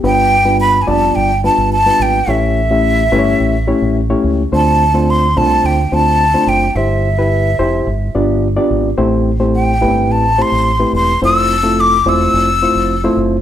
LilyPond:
<<
  \new Staff \with { instrumentName = "Flute" } { \time 4/4 \key g \mixolydian \tempo 4 = 107 g''4 b''16. aes''32 a''8 g''8 a''8 a''8 g''8 | e''2. r4 | a''4 c'''8 a''8 g''8 a''4 g''8 | e''2. r4 |
r4 g''4 a''8 c'''4 c'''8 | e'''4 d'''8 e'''2 r8 | }
  \new Staff \with { instrumentName = "Reed electric piano" } { \time 4/4 \key g \mixolydian << { g'16 r2. r8. | r1 | r1 | r1 |
r1 | r1 | } \\ { <g b d' f' b'>8 r16 <g b d' f' b'>8 r16 <g b d' f' d''>8. r16 <g b d' f' b'>8 r16 <g b d' f' b'>8 r16 | <a cis' e' g' cis''>8 r16 <a cis' e' g' e''>8 r16 <a cis' e' g' b' cis''>8. r16 <a cis' e' g' cis''>8 r16 <a cis' e' g' cis''>8 r16 | <a c' d' f' c''>8 r16 <a c' d' f' c''>8 r16 <a c' d' f' c''>8. r16 <a c' d' f' c''>8 r16 <a c' d' f' c''>8 r16 | <e' g' c''>8 r16 <e' g' b'>8 r16 <e' g' c''>8 r8 <b d' f' g' d''>8 r16 <b d' f' g' d''>8 r16 |
<a c' e' g' c''>8 r16 <a c' e' g' c''>8 r16 <a b c' e' g' b'>8. r16 <a c' e' g' c''>8 r16 <a c' e' g' b'>8 r16 | <a c' e' f' c''>8 r16 <a c' e' f' a'>8 r16 <a c' e' f' c''>8. r16 <a c' e' f' c''>8 r16 <a c' e' f' c''>8 r16 | } >> }
  \new Staff \with { instrumentName = "Fingered electric bass" } { \clef bass \time 4/4 \key g \mixolydian g,,4. f,,8 g,,8. g,,8. aes,,8 | a,,4. g,,8 a,,8. a,,8. cis,8 | d,4. c,8 d,8 d,4 fis,,8 | g,,4. f,,8 g,,8 g,,4 aes,,8 |
a,,4. g,,8 a,,8. a,,8. e,,8 | f,,4. e,,8 f,,8. f,,8. fis,,8 | }
>>